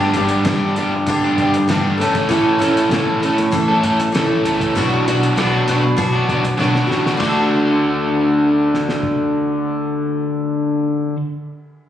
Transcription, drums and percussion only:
0, 0, Header, 1, 2, 480
1, 0, Start_track
1, 0, Key_signature, 2, "major"
1, 0, Tempo, 612870
1, 1799, Time_signature, 4, 2, 24, 8
1, 9315, End_track
2, 0, Start_track
2, 0, Title_t, "Drums"
2, 107, Note_on_c, 9, 42, 57
2, 185, Note_off_c, 9, 42, 0
2, 224, Note_on_c, 9, 42, 50
2, 303, Note_off_c, 9, 42, 0
2, 350, Note_on_c, 9, 42, 50
2, 358, Note_on_c, 9, 38, 96
2, 428, Note_off_c, 9, 42, 0
2, 436, Note_off_c, 9, 38, 0
2, 597, Note_on_c, 9, 42, 51
2, 675, Note_off_c, 9, 42, 0
2, 835, Note_on_c, 9, 42, 54
2, 842, Note_on_c, 9, 36, 85
2, 913, Note_off_c, 9, 42, 0
2, 920, Note_off_c, 9, 36, 0
2, 1081, Note_on_c, 9, 42, 48
2, 1082, Note_on_c, 9, 36, 61
2, 1160, Note_off_c, 9, 36, 0
2, 1160, Note_off_c, 9, 42, 0
2, 1205, Note_on_c, 9, 42, 49
2, 1283, Note_off_c, 9, 42, 0
2, 1322, Note_on_c, 9, 42, 52
2, 1330, Note_on_c, 9, 38, 91
2, 1400, Note_off_c, 9, 42, 0
2, 1408, Note_off_c, 9, 38, 0
2, 1577, Note_on_c, 9, 42, 52
2, 1655, Note_off_c, 9, 42, 0
2, 1683, Note_on_c, 9, 42, 48
2, 1685, Note_on_c, 9, 36, 76
2, 1762, Note_off_c, 9, 42, 0
2, 1763, Note_off_c, 9, 36, 0
2, 1806, Note_on_c, 9, 36, 82
2, 1807, Note_on_c, 9, 42, 55
2, 1884, Note_off_c, 9, 36, 0
2, 1885, Note_off_c, 9, 42, 0
2, 2049, Note_on_c, 9, 42, 55
2, 2127, Note_off_c, 9, 42, 0
2, 2169, Note_on_c, 9, 42, 47
2, 2248, Note_off_c, 9, 42, 0
2, 2282, Note_on_c, 9, 42, 46
2, 2290, Note_on_c, 9, 38, 90
2, 2360, Note_off_c, 9, 42, 0
2, 2368, Note_off_c, 9, 38, 0
2, 2530, Note_on_c, 9, 42, 54
2, 2608, Note_off_c, 9, 42, 0
2, 2649, Note_on_c, 9, 42, 52
2, 2656, Note_on_c, 9, 38, 30
2, 2727, Note_off_c, 9, 42, 0
2, 2735, Note_off_c, 9, 38, 0
2, 2761, Note_on_c, 9, 42, 50
2, 2764, Note_on_c, 9, 36, 86
2, 2839, Note_off_c, 9, 42, 0
2, 2843, Note_off_c, 9, 36, 0
2, 3003, Note_on_c, 9, 42, 49
2, 3081, Note_off_c, 9, 42, 0
2, 3130, Note_on_c, 9, 42, 57
2, 3209, Note_off_c, 9, 42, 0
2, 3247, Note_on_c, 9, 42, 52
2, 3255, Note_on_c, 9, 38, 89
2, 3326, Note_off_c, 9, 42, 0
2, 3333, Note_off_c, 9, 38, 0
2, 3488, Note_on_c, 9, 42, 49
2, 3566, Note_off_c, 9, 42, 0
2, 3607, Note_on_c, 9, 36, 69
2, 3612, Note_on_c, 9, 42, 55
2, 3686, Note_off_c, 9, 36, 0
2, 3690, Note_off_c, 9, 42, 0
2, 3730, Note_on_c, 9, 36, 77
2, 3732, Note_on_c, 9, 42, 59
2, 3808, Note_off_c, 9, 36, 0
2, 3811, Note_off_c, 9, 42, 0
2, 3977, Note_on_c, 9, 42, 55
2, 4055, Note_off_c, 9, 42, 0
2, 4097, Note_on_c, 9, 42, 48
2, 4176, Note_off_c, 9, 42, 0
2, 4210, Note_on_c, 9, 42, 47
2, 4218, Note_on_c, 9, 37, 90
2, 4288, Note_off_c, 9, 42, 0
2, 4296, Note_off_c, 9, 37, 0
2, 4446, Note_on_c, 9, 42, 54
2, 4524, Note_off_c, 9, 42, 0
2, 4682, Note_on_c, 9, 42, 50
2, 4685, Note_on_c, 9, 36, 86
2, 4760, Note_off_c, 9, 42, 0
2, 4764, Note_off_c, 9, 36, 0
2, 4925, Note_on_c, 9, 36, 61
2, 4929, Note_on_c, 9, 42, 43
2, 5003, Note_off_c, 9, 36, 0
2, 5007, Note_off_c, 9, 42, 0
2, 5048, Note_on_c, 9, 42, 42
2, 5127, Note_off_c, 9, 42, 0
2, 5179, Note_on_c, 9, 38, 42
2, 5257, Note_off_c, 9, 38, 0
2, 5288, Note_on_c, 9, 38, 47
2, 5367, Note_off_c, 9, 38, 0
2, 5411, Note_on_c, 9, 38, 58
2, 5490, Note_off_c, 9, 38, 0
2, 5531, Note_on_c, 9, 38, 64
2, 5610, Note_off_c, 9, 38, 0
2, 5638, Note_on_c, 9, 51, 70
2, 5639, Note_on_c, 9, 36, 54
2, 5716, Note_off_c, 9, 51, 0
2, 5717, Note_off_c, 9, 36, 0
2, 6846, Note_on_c, 9, 38, 42
2, 6925, Note_off_c, 9, 38, 0
2, 6962, Note_on_c, 9, 38, 54
2, 7040, Note_off_c, 9, 38, 0
2, 7073, Note_on_c, 9, 36, 61
2, 7151, Note_off_c, 9, 36, 0
2, 9315, End_track
0, 0, End_of_file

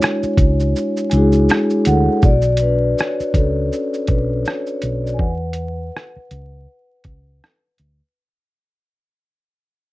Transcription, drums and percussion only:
0, 0, Header, 1, 2, 480
1, 0, Start_track
1, 0, Tempo, 740741
1, 1444, Time_signature, 4, 2, 24, 8
1, 6431, End_track
2, 0, Start_track
2, 0, Title_t, "Drums"
2, 11, Note_on_c, 9, 82, 76
2, 16, Note_on_c, 9, 26, 68
2, 26, Note_on_c, 9, 37, 109
2, 76, Note_off_c, 9, 82, 0
2, 80, Note_off_c, 9, 26, 0
2, 90, Note_off_c, 9, 37, 0
2, 149, Note_on_c, 9, 82, 49
2, 214, Note_off_c, 9, 82, 0
2, 243, Note_on_c, 9, 36, 95
2, 245, Note_on_c, 9, 42, 65
2, 245, Note_on_c, 9, 82, 43
2, 308, Note_off_c, 9, 36, 0
2, 310, Note_off_c, 9, 42, 0
2, 310, Note_off_c, 9, 82, 0
2, 387, Note_on_c, 9, 82, 41
2, 452, Note_off_c, 9, 82, 0
2, 492, Note_on_c, 9, 82, 64
2, 557, Note_off_c, 9, 82, 0
2, 627, Note_on_c, 9, 82, 48
2, 692, Note_off_c, 9, 82, 0
2, 719, Note_on_c, 9, 42, 55
2, 719, Note_on_c, 9, 82, 47
2, 784, Note_off_c, 9, 42, 0
2, 784, Note_off_c, 9, 82, 0
2, 855, Note_on_c, 9, 82, 38
2, 920, Note_off_c, 9, 82, 0
2, 965, Note_on_c, 9, 82, 60
2, 973, Note_on_c, 9, 26, 62
2, 981, Note_on_c, 9, 37, 98
2, 1030, Note_off_c, 9, 82, 0
2, 1038, Note_off_c, 9, 26, 0
2, 1046, Note_off_c, 9, 37, 0
2, 1102, Note_on_c, 9, 82, 40
2, 1167, Note_off_c, 9, 82, 0
2, 1200, Note_on_c, 9, 42, 77
2, 1200, Note_on_c, 9, 82, 52
2, 1264, Note_off_c, 9, 42, 0
2, 1264, Note_off_c, 9, 82, 0
2, 1440, Note_on_c, 9, 82, 61
2, 1444, Note_on_c, 9, 36, 105
2, 1505, Note_off_c, 9, 82, 0
2, 1509, Note_off_c, 9, 36, 0
2, 1566, Note_on_c, 9, 82, 46
2, 1631, Note_off_c, 9, 82, 0
2, 1665, Note_on_c, 9, 42, 68
2, 1665, Note_on_c, 9, 82, 50
2, 1730, Note_off_c, 9, 42, 0
2, 1730, Note_off_c, 9, 82, 0
2, 1933, Note_on_c, 9, 82, 68
2, 1947, Note_on_c, 9, 37, 116
2, 1998, Note_off_c, 9, 82, 0
2, 2012, Note_off_c, 9, 37, 0
2, 2073, Note_on_c, 9, 82, 47
2, 2138, Note_off_c, 9, 82, 0
2, 2164, Note_on_c, 9, 36, 96
2, 2167, Note_on_c, 9, 42, 62
2, 2167, Note_on_c, 9, 82, 41
2, 2229, Note_off_c, 9, 36, 0
2, 2232, Note_off_c, 9, 42, 0
2, 2232, Note_off_c, 9, 82, 0
2, 2414, Note_on_c, 9, 82, 62
2, 2479, Note_off_c, 9, 82, 0
2, 2551, Note_on_c, 9, 82, 45
2, 2616, Note_off_c, 9, 82, 0
2, 2640, Note_on_c, 9, 42, 58
2, 2640, Note_on_c, 9, 82, 42
2, 2647, Note_on_c, 9, 36, 95
2, 2705, Note_off_c, 9, 42, 0
2, 2705, Note_off_c, 9, 82, 0
2, 2712, Note_off_c, 9, 36, 0
2, 2885, Note_on_c, 9, 82, 57
2, 2901, Note_on_c, 9, 37, 106
2, 2950, Note_off_c, 9, 82, 0
2, 2966, Note_off_c, 9, 37, 0
2, 3022, Note_on_c, 9, 82, 42
2, 3087, Note_off_c, 9, 82, 0
2, 3121, Note_on_c, 9, 42, 68
2, 3121, Note_on_c, 9, 82, 51
2, 3186, Note_off_c, 9, 42, 0
2, 3186, Note_off_c, 9, 82, 0
2, 3283, Note_on_c, 9, 82, 43
2, 3348, Note_off_c, 9, 82, 0
2, 3364, Note_on_c, 9, 36, 111
2, 3429, Note_off_c, 9, 36, 0
2, 3585, Note_on_c, 9, 42, 69
2, 3650, Note_off_c, 9, 42, 0
2, 3866, Note_on_c, 9, 37, 102
2, 3930, Note_off_c, 9, 37, 0
2, 4088, Note_on_c, 9, 42, 58
2, 4153, Note_off_c, 9, 42, 0
2, 4561, Note_on_c, 9, 42, 55
2, 4567, Note_on_c, 9, 36, 93
2, 4626, Note_off_c, 9, 42, 0
2, 4632, Note_off_c, 9, 36, 0
2, 4820, Note_on_c, 9, 37, 103
2, 4885, Note_off_c, 9, 37, 0
2, 5043, Note_on_c, 9, 42, 69
2, 5108, Note_off_c, 9, 42, 0
2, 6431, End_track
0, 0, End_of_file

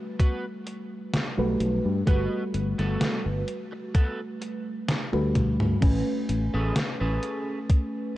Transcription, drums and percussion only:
0, 0, Header, 1, 2, 480
1, 0, Start_track
1, 0, Tempo, 937500
1, 1060, Time_signature, 4, 2, 24, 8
1, 4184, End_track
2, 0, Start_track
2, 0, Title_t, "Drums"
2, 100, Note_on_c, 9, 36, 113
2, 101, Note_on_c, 9, 42, 77
2, 151, Note_off_c, 9, 36, 0
2, 152, Note_off_c, 9, 42, 0
2, 341, Note_on_c, 9, 42, 61
2, 392, Note_off_c, 9, 42, 0
2, 581, Note_on_c, 9, 38, 116
2, 581, Note_on_c, 9, 42, 78
2, 632, Note_off_c, 9, 38, 0
2, 632, Note_off_c, 9, 42, 0
2, 821, Note_on_c, 9, 42, 63
2, 872, Note_off_c, 9, 42, 0
2, 1060, Note_on_c, 9, 36, 114
2, 1061, Note_on_c, 9, 42, 79
2, 1112, Note_off_c, 9, 36, 0
2, 1112, Note_off_c, 9, 42, 0
2, 1301, Note_on_c, 9, 42, 64
2, 1352, Note_off_c, 9, 42, 0
2, 1428, Note_on_c, 9, 38, 32
2, 1428, Note_on_c, 9, 42, 36
2, 1479, Note_off_c, 9, 38, 0
2, 1479, Note_off_c, 9, 42, 0
2, 1541, Note_on_c, 9, 38, 113
2, 1541, Note_on_c, 9, 42, 78
2, 1592, Note_off_c, 9, 38, 0
2, 1592, Note_off_c, 9, 42, 0
2, 1781, Note_on_c, 9, 42, 65
2, 1832, Note_off_c, 9, 42, 0
2, 2020, Note_on_c, 9, 42, 84
2, 2021, Note_on_c, 9, 36, 109
2, 2072, Note_off_c, 9, 36, 0
2, 2072, Note_off_c, 9, 42, 0
2, 2261, Note_on_c, 9, 42, 65
2, 2312, Note_off_c, 9, 42, 0
2, 2501, Note_on_c, 9, 38, 119
2, 2501, Note_on_c, 9, 42, 82
2, 2552, Note_off_c, 9, 38, 0
2, 2552, Note_off_c, 9, 42, 0
2, 2628, Note_on_c, 9, 48, 49
2, 2679, Note_off_c, 9, 48, 0
2, 2741, Note_on_c, 9, 36, 59
2, 2741, Note_on_c, 9, 42, 65
2, 2741, Note_on_c, 9, 47, 79
2, 2792, Note_off_c, 9, 36, 0
2, 2792, Note_off_c, 9, 42, 0
2, 2792, Note_off_c, 9, 47, 0
2, 2868, Note_on_c, 9, 45, 77
2, 2919, Note_off_c, 9, 45, 0
2, 2981, Note_on_c, 9, 36, 112
2, 2981, Note_on_c, 9, 42, 84
2, 2981, Note_on_c, 9, 49, 99
2, 3032, Note_off_c, 9, 36, 0
2, 3032, Note_off_c, 9, 42, 0
2, 3032, Note_off_c, 9, 49, 0
2, 3221, Note_on_c, 9, 42, 70
2, 3272, Note_off_c, 9, 42, 0
2, 3461, Note_on_c, 9, 38, 113
2, 3461, Note_on_c, 9, 42, 82
2, 3512, Note_off_c, 9, 38, 0
2, 3512, Note_off_c, 9, 42, 0
2, 3701, Note_on_c, 9, 42, 67
2, 3752, Note_off_c, 9, 42, 0
2, 3941, Note_on_c, 9, 36, 113
2, 3941, Note_on_c, 9, 42, 80
2, 3992, Note_off_c, 9, 36, 0
2, 3992, Note_off_c, 9, 42, 0
2, 4184, End_track
0, 0, End_of_file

